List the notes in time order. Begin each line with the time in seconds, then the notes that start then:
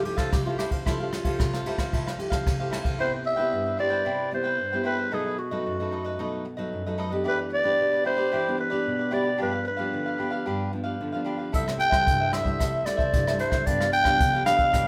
Already playing: F3
0.05 A3 E4 G4, muted cavaquinho stroke, ride
0.17 A4 C5 F5, kick, cross-stick, ride
0.32 C3 G4, kick, cross-stick, ride
0.45 A3 E4 F4 G4 A4 C5 F5
0.58 E4 G4 A4 C5 F5, cross-stick, ride
0.71 A4 C5 F5, kick, ride
0.86 F3 A3 E4 F4 G4 A4 C5 F5, kick, cross-stick, ride
1.00 A3 E4 G4 A4 C5 F5
1.11 muted cavaquinho stroke, cross-stick, ride
1.24 A3 G4 A4 C5 F5, kick, ride
1.40 C3, kick, cross-stick, ride
1.54 A4 C5 F5, cross-stick
1.65 A3 E4 G4 A4 C5 F5, ride
1.78 A4 C5 F5, kick, cross-stick, ride
1.93 F3 E4 A4 C5 F5, kick, ride
2.07 A4 C5 F5, cross-stick
2.18 A3 E4 G4, muted cavaquinho stroke, ride
2.30 A4 C5 F5, kick, cross-stick, ride
2.46 C3, kick, cross-stick, ride
2.59 A3 E4 G4 A4 C5 F5
2.70 E4 A4 C5 F5, cross-stick, ride
2.83 A4 C5 F5, kick, ride
2.99 C3 B3 E4 G4 B4 C5 G5
3.12 B4 C5 G5
3.24 E5, muted cavaquinho stroke
3.36 B3 E4 G4 B4 C5 G5
3.53 G2
3.66 B4 C5 G5
3.77 B3 E4 G4 B4 C5 D5 G5
3.89 B4 C5 G5
4.05 C3 E4 B4 C5 G5
4.31 B3 E4 G4 C5, muted cavaquinho stroke
4.44 B4 C5 G5
4.60 G2
4.72 B3 E4 G4 B4 C5 G5
4.84 E4 B4 C5 G5
4.97 B4 C5 G5
5.11 B2 F#3 A3 D#4 G#4 A4 B4 D#5
5.26 A4 B4 D#5
5.38 F#4, muted cavaquinho stroke
5.51 F#3 A3 D#4 A4 B4 D#5
5.66 F#2
5.80 F#3 A3 D#4 A4 B4 D#5
5.91 D#4 A4 B4 D#5
6.04 A4 B4 D#5
6.19 B2 F#3 A3 D#4 A4 B4 D#5
6.45 muted cavaquinho stroke
6.57 F#3 A3 D#4 A4 B4 D#5
6.73 F#2
6.86 F#3 A3 D#4 A4 B4 D#5
6.98 D#4 A4 B4 D#5
7.10 B3 D4 G4 A4 B4 D#5
7.24 E3 E4 G4 B4 D5
7.38 G4 B4 D5
7.50 muted cavaquinho stroke
7.54 D5
7.63 B3 D4 G4 B4 D5
7.80 B2
7.92 G4 B4 D5
8.04 D4 E4 G4 B4 C5 D5
8.17 G4 B4 D5
8.32 E3 E4 G4 B4 D5
8.48 B3 D4 G4
8.57 B4, muted cavaquinho stroke
8.70 B3 D4 G4 B4 D5
8.87 B2
8.99 G4 B4 D5
9.11 B3 D4 E4 G4 B4 D5
9.23 G4 B4 D5
9.38 G2 F3 B3 D4 G4 B4 F5
9.43 B4
9.52 G4 B4 F5
9.65 B4, muted cavaquinho stroke
9.77 F3 B3 D4 G4 B4 F5
9.94 D3
10.06 G4 B4 F5
10.18 F3 B3 D4 G4 B4 F5
10.31 G4 B4 F5
10.46 G2 D4 G4 B4 F5
10.73 F3 B3 D4, muted cavaquinho stroke
10.84 G4 B4 F5
11.01 D3 F3 B3 D4
11.12 F3 B3 D4 G4 B4 F5
11.25 D4 G4 B4 F5
11.38 G4 B4 F5
11.52 C3 G3 A3 E4 A4 C5 E5, kick, closed hi-hat
11.66 A4 C5 E5, cross-stick
11.78 G5, muted cavaquinho stroke, closed hi-hat
11.90 G3 A3 E4 A4 C5 E5, kick, cross-stick
12.07 G2, kick, closed hi-hat
12.20 A4 C5 E5
12.32 G3 A3 E4 A4 C5 E5, cross-stick, closed hi-hat
12.43 G3 A3 E4 A4 C5 E5, kick
12.59 C3 E4 A4 C5 E5, kick, cross-stick, closed hi-hat
12.86 G3 A3 E4 D5, muted cavaquinho stroke, cross-stick, closed hi-hat
12.97 A4 C5 E5, kick
13.13 G2 G3 A3 E4, kick, closed hi-hat
13.27 G3 A3 E4 A4 C5 E5, cross-stick, closed hi-hat
13.39 E4 A4 C5 E5, closed hi-hat
13.51 A4 C5 E5, kick, cross-stick, closed hi-hat
13.66 G2 F3 B3 D4 G4 B4 D5 F5, kick, closed hi-hat
13.80 G4 B4 F5, cross-stick, closed hi-hat
13.92 G5, muted cavaquinho stroke, closed hi-hat
14.04 F3 B3 D4 G4 B4 F5, kick, cross-stick
14.20 D3, kick, closed hi-hat
14.33 G4 B4 F5, closed hi-hat
14.45 F3 B3 D4 G4 B4 F5, cross-stick, closed hi-hat
14.57 G4 B4 F5, kick, closed hi-hat
14.71 G2 D4 G4 B4 F5, kick, cross-stick, closed hi-hat